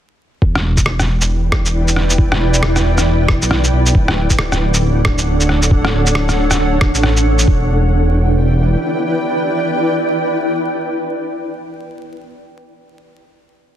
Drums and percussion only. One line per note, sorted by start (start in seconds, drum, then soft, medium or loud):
0.42 kick loud
0.55 cross-stick medium
0.77 kick medium
0.77 shaker medium
0.86 cross-stick loud
1.00 cross-stick soft
1.00 shaker soft
1.21 shaker medium
1.52 kick loud
1.52 cross-stick loud
1.66 shaker medium
1.88 shaker soft
1.96 cross-stick soft
2.10 shaker medium
2.18 kick loud
2.32 cross-stick medium
2.54 shaker medium
2.63 cross-stick loud
2.76 cross-stick soft
2.76 shaker soft
2.98 cross-stick medium
2.98 shaker medium
3.28 kick loud
3.28 cross-stick loud
3.42 shaker medium
3.51 cross-stick medium
3.64 shaker soft
3.86 shaker medium
3.95 kick loud
4.08 cross-stick medium
4.30 kick medium
4.30 shaker medium
4.39 cross-stick loud
4.52 cross-stick soft
4.52 shaker soft
4.74 shaker medium
5.05 kick loud
5.05 cross-stick loud
5.18 shaker medium
5.40 shaker soft
5.49 cross-stick soft
5.62 shaker medium
5.71 kick loud
5.85 cross-stick medium
6.07 shaker medium
6.15 cross-stick loud
6.29 cross-stick soft
6.29 shaker soft
6.51 cross-stick medium
6.51 shaker medium
6.81 kick loud
6.81 cross-stick loud
6.95 shaker medium
7.03 cross-stick medium
7.17 shaker soft
7.39 shaker medium
7.48 kick loud